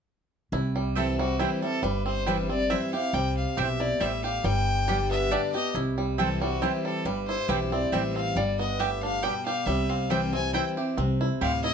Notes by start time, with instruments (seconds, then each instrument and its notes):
0.52 upright bass C2, steel-string acoustic guitar C3, five-string banjo E4
0.76 five-string banjo G3
0.95 steel-string acoustic guitar E3 G3 C4 E4, mandolin C4 E4 C5 G5, five-string banjo C4, fiddle A4
1.18 five-string banjo G3, steel-string acoustic guitar C4 E4, fiddle F#4
1.39 steel-string acoustic guitar E3 G3 C4 E4, mandolin C4 E4 C5 G5, five-string banjo E4, fiddle G4
1.62 five-string banjo G3, steel-string acoustic guitar C4 E4, fiddle A4
1.82 upright bass G1, steel-string acoustic guitar G2, five-string banjo G3, fiddle B4
2.06 five-string banjo C4, fiddle C5
2.26 steel-string acoustic guitar E3 G3 C4 E4, five-string banjo G3, mandolin C4 E4 C5 G5, fiddle B4
2.49 five-string banjo C4, steel-string acoustic guitar C4 E4, fiddle D5
2.70 steel-string acoustic guitar E3 G3 C4 E4, mandolin C4 E4 C5 G5, five-string banjo E4, fiddle E5
2.93 steel-string acoustic guitar C4 E4, five-string banjo G4, fiddle F5
3.13 upright bass C2, steel-string acoustic guitar C3, five-string banjo G3, fiddle G5
3.37 fiddle F5
3.57 upright bass B1, steel-string acoustic guitar B2, mandolin C4 E4 C5 G5, five-string banjo G4, fiddle E5
3.80 five-string banjo E4, fiddle D5
4.00 upright bass A1, steel-string acoustic guitar A2, five-string banjo G3, mandolin C4 E4 C5 G5, fiddle E5
4.24 five-string banjo G4, fiddle F5
4.44 upright bass G1, steel-string acoustic guitar G2, five-string banjo G3, fiddle G5
4.88 steel-string acoustic guitar D3 G3 B3 G4, five-string banjo G3, mandolin B3 G4 D5 G5
5.11 five-string banjo B3, fiddle E5
5.31 steel-string acoustic guitar D3 G3 B3, mandolin B3 G4 D5 G5, five-string banjo D4, fiddle D5
5.54 steel-string acoustic guitar B3 G4, five-string banjo G4, fiddle D#5
5.74 upright bass C2, steel-string acoustic guitar C3, five-string banjo E4
5.98 five-string banjo G3
6.18 steel-string acoustic guitar E3 G3 C4 E4, mandolin C4 E4 C5 G5, five-string banjo C4, fiddle A4
6.41 five-string banjo G3, steel-string acoustic guitar C4 E4, fiddle F#4
6.62 steel-string acoustic guitar E3 G3 C4 E4, mandolin C4 E4 C5 G5, five-string banjo E4, fiddle G4
6.85 five-string banjo G3, fiddle A4
7.05 upright bass G1, steel-string acoustic guitar G2, five-string banjo G3, fiddle B4
7.27 five-string banjo E4, fiddle C5
7.48 upright bass B1, steel-string acoustic guitar E3 G3 C4 E4, mandolin C4 E4 C5 G5, five-string banjo G4, fiddle B4
7.71 five-string banjo C4, steel-string acoustic guitar C4 E4, fiddle D5
7.92 upright bass A1, steel-string acoustic guitar E3 G3 C4 E4, five-string banjo G3, mandolin C4 E4 C5 G5, fiddle E5
8.16 five-string banjo C4, fiddle F5
8.36 upright bass G1, steel-string acoustic guitar G2, five-string banjo G3, fiddle D5
8.59 five-string banjo B3, fiddle D#5
8.79 steel-string acoustic guitar A2, mandolin B3 G4 D5 G5, five-string banjo G4, fiddle E5
9.03 five-string banjo D4, fiddle F5
9.23 steel-string acoustic guitar B2, five-string banjo G3, mandolin B3 G4 D5 G5, fiddle G5
9.46 five-string banjo G4, fiddle F5
9.66 upright bass C2, steel-string acoustic guitar C3, five-string banjo G3, fiddle E5
9.89 five-string banjo C4, fiddle F5
10.10 steel-string acoustic guitar E3 G3 C4 E4, five-string banjo G3, mandolin C4 E4 C5 G5, fiddle G5
10.33 five-string banjo C4, steel-string acoustic guitar C4 E4, fiddle G#5
10.53 steel-string acoustic guitar E3 G3 C4 E4, mandolin C4 E4 C5 G5, five-string banjo E4, fiddle G5
10.77 steel-string acoustic guitar C4 E4, five-string banjo G4
10.97 upright bass C2, steel-string acoustic guitar C3, five-string banjo C4
11.21 five-string banjo E4
11.41 upright bass D2, steel-string acoustic guitar A2, five-string banjo G3, mandolin C4 E4 C5 G5, fiddle F5
11.63 five-string banjo E4, fiddle D#5